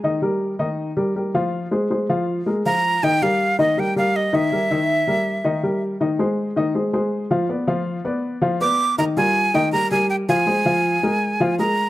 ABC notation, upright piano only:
X:1
M:4/4
L:1/8
Q:1/4=161
K:Eb
V:1 name="Upright piano"
[E,Ee] [G,GB]2 [E,Ee]2 [G,GB] [G,GB] [F,Ff]- | [F,Ff] [A,Ac] [A,Ac] [F,Ff]2 [A,AB] [F,Ff]2 | [E,Ee] [G,GB]2 [E,Ee] [G,GB] [G,GB]2 [E,Ee] | [G,GB] [E,E_f]2 [G,GB]2 [E,Ee] [G,GB]2 |
[E,Ee] [A,Ac]2 [E,Ee] [A,Ac] [A,Ac]2 [F,Ff] | [=B,=Bd] [F,Ff]2 [B,Bd]2 [F,Ff] [B,Bd]2 | [E,Ee] [G,FB]2 [E,Ee] [G,GB] [G,GB]2 [F,Ff] | [A,Ac] [F,Ff]2 [A,AB]2 [F,Ff] [A,AB]2 |]